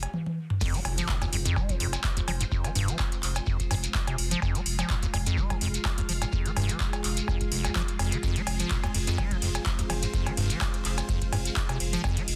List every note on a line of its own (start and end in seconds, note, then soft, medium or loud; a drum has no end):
0.00 0.13 F5 loud
0.00 closed hi-hat medium
0.00 cowbell medium
0.14 high tom medium
0.26 high tom medium
0.50 mid tom medium
0.61 0.76 F2 medium
0.61 12.36 G#3 medium
0.61 12.36 F4 medium
0.61 4.41 C5 medium
0.61 kick loud
0.61 crash loud
0.61 impact medium
0.61 shekere medium
0.74 0.80 G#3 loud
0.74 closed hi-hat medium
0.74 shekere soft
0.85 1.01 F1 loud
0.85 open hi-hat loud
0.85 cowbell medium
0.98 1.10 F3 medium
0.98 closed hi-hat medium
0.98 shekere medium
1.09 1.16 G#2 loud
1.09 kick loud
1.09 clap loud
1.09 shekere medium
1.22 1.25 D#2 loud
1.22 closed hi-hat soft
1.22 cowbell medium
1.22 shekere soft
1.33 1.49 F1 loud
1.33 1.37 F2 medium
1.33 open hi-hat loud
1.45 1.58 F2 loud
1.45 closed hi-hat medium
1.45 shekere medium
1.56 1.71 G#3 loud
1.56 kick loud
1.56 cowbell medium
1.56 shekere medium
1.69 1.75 F3 loud
1.69 kick medium
1.69 closed hi-hat soft
1.69 shekere soft
1.80 1.97 F1 medium
1.80 1.87 F2 medium
1.80 open hi-hat loud
1.93 closed hi-hat medium
1.93 cowbell medium
1.93 shekere medium
2.03 kick loud
2.03 clap loud
2.03 shekere medium
2.17 2.21 D#2 loud
2.17 closed hi-hat medium
2.17 shekere soft
2.28 2.44 F1 medium
2.28 2.32 F3 medium
2.28 open hi-hat loud
2.28 cowbell medium
2.40 2.44 G#2 medium
2.40 closed hi-hat medium
2.40 shekere medium
2.52 2.66 F2 medium
2.52 kick loud
2.52 shekere medium
2.64 2.71 F3 loud
2.64 closed hi-hat medium
2.64 cowbell medium
2.64 shekere soft
2.75 2.92 F1 loud
2.75 2.90 G2 loud
2.75 open hi-hat loud
2.88 2.97 F3 loud
2.88 closed hi-hat medium
2.88 shekere medium
2.98 kick loud
2.98 clap loud
2.98 cowbell medium
2.98 shekere medium
3.12 closed hi-hat soft
3.12 shekere soft
3.23 3.40 F1 loud
3.23 clap soft
3.23 open hi-hat loud
3.35 closed hi-hat medium
3.35 cowbell medium
3.35 shekere medium
3.46 3.58 F2 medium
3.46 kick loud
3.46 shekere medium
3.60 kick medium
3.60 closed hi-hat soft
3.60 shekere soft
3.71 3.87 F1 medium
3.71 3.75 G2 loud
3.71 open hi-hat loud
3.71 cowbell medium
3.84 closed hi-hat medium
3.84 shekere medium
3.95 kick loud
3.95 clap loud
3.95 shekere medium
4.07 4.16 C3 medium
4.07 closed hi-hat medium
4.07 cowbell medium
4.07 shekere soft
4.18 4.35 F1 medium
4.18 open hi-hat loud
4.31 4.40 F3 loud
4.31 closed hi-hat medium
4.31 shekere medium
4.42 4.57 F2 medium
4.42 8.22 F5 loud
4.42 kick loud
4.42 cowbell medium
4.42 shekere medium
4.55 4.61 G#3 loud
4.55 closed hi-hat medium
4.55 shekere soft
4.66 4.82 F1 loud
4.66 open hi-hat loud
4.79 4.91 F3 medium
4.79 closed hi-hat medium
4.79 cowbell medium
4.79 shekere medium
4.90 4.97 G#2 loud
4.90 kick loud
4.90 clap loud
4.90 shekere medium
5.02 5.06 D#2 loud
5.02 closed hi-hat soft
5.02 shekere soft
5.14 5.30 F1 loud
5.14 5.18 F2 medium
5.14 open hi-hat loud
5.14 cowbell medium
5.26 5.39 F2 loud
5.26 closed hi-hat medium
5.26 shekere medium
5.37 5.52 G#3 loud
5.37 kick loud
5.37 shekere medium
5.50 5.56 F3 loud
5.50 kick medium
5.50 closed hi-hat soft
5.50 cowbell medium
5.50 shekere soft
5.61 5.78 F1 medium
5.61 5.68 F2 medium
5.61 open hi-hat loud
5.74 closed hi-hat medium
5.74 shekere medium
5.85 kick loud
5.85 clap loud
5.85 cowbell medium
5.85 shekere medium
5.98 6.02 D#2 loud
5.98 closed hi-hat medium
5.98 shekere soft
6.09 6.25 F1 medium
6.09 6.13 F3 medium
6.09 open hi-hat loud
6.21 6.25 G#2 medium
6.21 closed hi-hat medium
6.21 cowbell medium
6.21 shekere medium
6.32 6.47 F2 medium
6.32 kick loud
6.32 shekere medium
6.46 6.52 F3 loud
6.46 closed hi-hat soft
6.46 shekere soft
6.56 6.73 F1 loud
6.56 6.71 G2 loud
6.56 open hi-hat loud
6.56 cowbell medium
6.68 6.78 F3 loud
6.68 closed hi-hat medium
6.68 shekere medium
6.80 kick loud
6.80 clap loud
6.80 shekere medium
6.93 closed hi-hat soft
6.93 cowbell medium
6.93 shekere soft
7.04 7.21 F1 loud
7.04 clap soft
7.04 open hi-hat loud
7.17 closed hi-hat medium
7.17 shekere medium
7.28 7.39 F2 medium
7.28 kick loud
7.28 cowbell medium
7.28 shekere medium
7.40 kick medium
7.40 closed hi-hat soft
7.40 shekere soft
7.52 7.68 F1 medium
7.52 7.66 F1 medium
7.52 open hi-hat loud
7.64 7.71 F2 loud
7.64 closed hi-hat medium
7.64 cowbell medium
7.64 shekere medium
7.75 7.83 F3 loud
7.75 kick loud
7.75 clap loud
7.75 shekere medium
7.88 closed hi-hat medium
7.88 shekere soft
7.99 8.16 F1 medium
7.99 8.14 F2 medium
7.99 open hi-hat loud
7.99 cowbell medium
8.12 8.18 D#3 loud
8.12 closed hi-hat medium
8.12 shekere medium
8.23 8.37 F2 loud
8.23 12.03 C5 loud
8.23 kick loud
8.23 ride medium
8.23 shekere medium
8.36 8.42 G#3 loud
8.36 closed hi-hat medium
8.36 shekere soft
8.47 8.63 F1 loud
8.47 open hi-hat loud
8.47 ride medium
8.47 cowbell medium
8.59 8.72 F3 medium
8.59 closed hi-hat medium
8.59 shekere medium
8.71 8.78 G#2 loud
8.71 kick loud
8.71 clap loud
8.71 ride medium
8.71 shekere medium
8.83 8.87 D#2 loud
8.83 closed hi-hat soft
8.83 cowbell medium
8.83 shekere soft
8.94 9.11 F1 medium
8.94 8.99 F2 medium
8.94 open hi-hat loud
8.94 ride medium
9.07 9.20 F2 loud
9.07 closed hi-hat medium
9.07 shekere medium
9.18 9.33 G#3 loud
9.18 kick loud
9.18 ride medium
9.18 cowbell medium
9.18 shekere medium
9.31 9.37 F3 loud
9.31 kick medium
9.31 closed hi-hat soft
9.31 shekere soft
9.42 9.59 F1 medium
9.42 9.49 F2 medium
9.42 open hi-hat loud
9.42 ride medium
9.54 closed hi-hat medium
9.54 cowbell medium
9.54 shekere medium
9.66 kick loud
9.66 clap loud
9.66 ride medium
9.66 shekere medium
9.79 9.82 D#2 loud
9.79 closed hi-hat soft
9.79 shekere soft
9.90 10.06 F1 medium
9.90 9.94 F3 medium
9.90 open hi-hat loud
9.90 ride medium
9.90 cowbell medium
10.03 10.06 G#2 medium
10.03 closed hi-hat medium
10.03 shekere medium
10.14 10.28 F2 medium
10.14 kick loud
10.14 ride medium
10.14 shekere medium
10.26 10.32 F3 loud
10.26 closed hi-hat soft
10.26 cowbell medium
10.26 shekere soft
10.37 10.54 F1 loud
10.37 10.52 G2 loud
10.37 open hi-hat loud
10.37 ride medium
10.49 10.59 F3 loud
10.49 closed hi-hat medium
10.49 shekere medium
10.61 kick loud
10.61 clap loud
10.61 ride medium
10.61 cowbell medium
10.61 shekere medium
10.74 closed hi-hat soft
10.74 shekere soft
10.85 11.01 F1 loud
10.85 clap soft
10.85 open hi-hat loud
10.85 ride medium
10.97 closed hi-hat medium
10.97 cowbell medium
10.97 shekere medium
11.09 11.19 F2 medium
11.09 kick loud
11.09 ride medium
11.09 shekere medium
11.21 kick medium
11.21 closed hi-hat soft
11.21 shekere soft
11.33 11.49 F1 medium
11.33 11.37 G2 loud
11.33 open hi-hat loud
11.33 ride medium
11.33 cowbell medium
11.45 closed hi-hat medium
11.45 shekere medium
11.56 kick loud
11.56 clap loud
11.56 ride medium
11.56 shekere medium
11.69 11.78 C3 medium
11.69 closed hi-hat medium
11.69 cowbell medium
11.69 shekere soft
11.80 11.97 F1 medium
11.80 open hi-hat loud
11.80 ride medium
11.93 12.02 F3 loud
11.93 closed hi-hat medium
11.93 shekere medium
12.04 12.18 F2 loud
12.04 12.36 D#5 medium
12.04 kick loud
12.04 ride medium
12.04 cowbell medium
12.04 shekere medium
12.17 12.23 G#3 loud
12.17 closed hi-hat medium
12.17 shekere soft
12.28 12.36 F1 loud
12.28 open hi-hat loud
12.28 ride medium